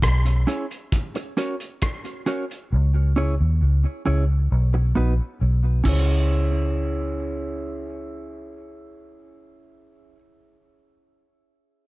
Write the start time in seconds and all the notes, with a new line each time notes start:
0.02 B1, kick, cross-stick, closed hi-hat
0.26 closed hi-hat
0.47 C#4 E4 G#4 C#5, closed hi-hat
0.71 closed hi-hat
0.92 kick, closed hi-hat
1.15 muted clean electric guitar stroke, closed hi-hat
1.37 C#4 F#4 A#4 C#5, closed hi-hat
1.60 closed hi-hat
1.82 kick, cross-stick, closed hi-hat
2.05 closed hi-hat
2.26 C#4 F#4 A#4 C#5, closed hi-hat
2.51 closed hi-hat
2.72 C#2
3.16 C#4 E4 G#4 C#5
3.41 D#2
3.62 C#2
4.06 C#2 C#4 E4 G#4 C#5
4.52 B1
4.74 muted clean electric guitar stroke
4.95 A#1 B3 D#4 F#4 B4
5.41 B1
5.84 C#2 C#4 E4 G#4, kick, crash, cabasa
5.89 C#5